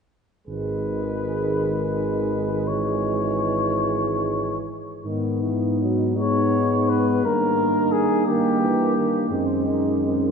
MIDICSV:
0, 0, Header, 1, 6, 480
1, 0, Start_track
1, 0, Key_signature, 5, "minor"
1, 0, Tempo, 753769
1, 298, Time_signature, 6, 3, 24, 8
1, 773, Tempo, 729040
1, 2213, Tempo, 792602
1, 2693, Tempo, 859599
1, 3173, Tempo, 757576
1, 3653, Tempo, 715990
1, 4613, Tempo, 688073
1, 6053, Tempo, 739827
1, 6706, End_track
2, 0, Start_track
2, 0, Title_t, "Cornet"
2, 0, Program_c, 0, 56
2, 302, Note_on_c, 0, 71, 31
2, 1735, Note_on_c, 0, 73, 36
2, 1745, Note_off_c, 0, 71, 0
2, 2977, Note_off_c, 0, 73, 0
2, 3906, Note_on_c, 0, 73, 54
2, 4377, Note_on_c, 0, 71, 44
2, 4387, Note_off_c, 0, 73, 0
2, 4621, Note_on_c, 0, 70, 54
2, 4632, Note_off_c, 0, 71, 0
2, 5083, Note_on_c, 0, 68, 52
2, 5094, Note_off_c, 0, 70, 0
2, 5322, Note_off_c, 0, 68, 0
2, 5327, Note_on_c, 0, 67, 51
2, 6040, Note_off_c, 0, 67, 0
2, 6706, End_track
3, 0, Start_track
3, 0, Title_t, "French horn section"
3, 0, Program_c, 1, 60
3, 298, Note_on_c, 1, 68, 31
3, 2950, Note_off_c, 1, 68, 0
3, 3171, Note_on_c, 1, 63, 35
3, 4586, Note_off_c, 1, 63, 0
3, 4614, Note_on_c, 1, 63, 36
3, 5313, Note_off_c, 1, 63, 0
3, 5331, Note_on_c, 1, 58, 44
3, 6056, Note_off_c, 1, 58, 0
3, 6058, Note_on_c, 1, 60, 45
3, 6289, Note_off_c, 1, 60, 0
3, 6289, Note_on_c, 1, 63, 43
3, 6526, Note_off_c, 1, 63, 0
3, 6531, Note_on_c, 1, 60, 46
3, 6706, Note_off_c, 1, 60, 0
3, 6706, End_track
4, 0, Start_track
4, 0, Title_t, "Euphonium"
4, 0, Program_c, 2, 58
4, 299, Note_on_c, 2, 56, 32
4, 2951, Note_off_c, 2, 56, 0
4, 3174, Note_on_c, 2, 59, 34
4, 3872, Note_off_c, 2, 59, 0
4, 3893, Note_on_c, 2, 59, 40
4, 4607, Note_on_c, 2, 58, 42
4, 4617, Note_off_c, 2, 59, 0
4, 6043, Note_off_c, 2, 58, 0
4, 6048, Note_on_c, 2, 56, 46
4, 6706, Note_off_c, 2, 56, 0
4, 6706, End_track
5, 0, Start_track
5, 0, Title_t, "Trombone"
5, 0, Program_c, 3, 57
5, 307, Note_on_c, 3, 51, 29
5, 1704, Note_off_c, 3, 51, 0
5, 1732, Note_on_c, 3, 52, 35
5, 2953, Note_off_c, 3, 52, 0
5, 3171, Note_on_c, 3, 51, 35
5, 3411, Note_on_c, 3, 52, 34
5, 3420, Note_off_c, 3, 51, 0
5, 3651, Note_off_c, 3, 52, 0
5, 3658, Note_on_c, 3, 54, 35
5, 3899, Note_on_c, 3, 56, 32
5, 3909, Note_off_c, 3, 54, 0
5, 4615, Note_on_c, 3, 51, 36
5, 4625, Note_off_c, 3, 56, 0
5, 5327, Note_off_c, 3, 51, 0
5, 5336, Note_on_c, 3, 51, 43
5, 5565, Note_off_c, 3, 51, 0
5, 5568, Note_on_c, 3, 52, 46
5, 5808, Note_on_c, 3, 51, 45
5, 5819, Note_off_c, 3, 52, 0
5, 6056, Note_off_c, 3, 51, 0
5, 6059, Note_on_c, 3, 51, 43
5, 6706, Note_off_c, 3, 51, 0
5, 6706, End_track
6, 0, Start_track
6, 0, Title_t, "Tuba"
6, 0, Program_c, 4, 58
6, 299, Note_on_c, 4, 32, 31
6, 2951, Note_off_c, 4, 32, 0
6, 3172, Note_on_c, 4, 44, 33
6, 4586, Note_off_c, 4, 44, 0
6, 4611, Note_on_c, 4, 43, 39
6, 6025, Note_off_c, 4, 43, 0
6, 6055, Note_on_c, 4, 42, 45
6, 6706, Note_off_c, 4, 42, 0
6, 6706, End_track
0, 0, End_of_file